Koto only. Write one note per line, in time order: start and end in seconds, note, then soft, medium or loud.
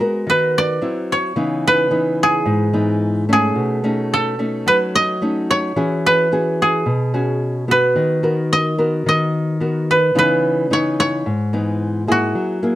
0.00 0.90 G#4 medium
0.00 0.36 A#4 medium
0.30 1.67 B4 medium
0.58 1.18 D5 loud
1.12 2.78 C#5 medium
1.68 3.45 B4 medium
2.23 3.32 G#4 medium
3.33 4.20 G#4 medium
4.14 6.04 A4 medium
4.68 4.75 B4 medium
4.95 6.50 D#5 loud
5.51 7.16 C#5 medium
6.06 7.71 B4 medium
6.62 8.59 G#4 medium
7.71 9.49 B4 medium
8.53 9.08 D#5 loud
9.09 10.63 D#5 medium
9.91 10.18 B4 medium
10.19 11.96 B4 medium
10.73 11.00 C#5 medium
11.00 12.66 C#5 medium
12.12 12.75 F#4 medium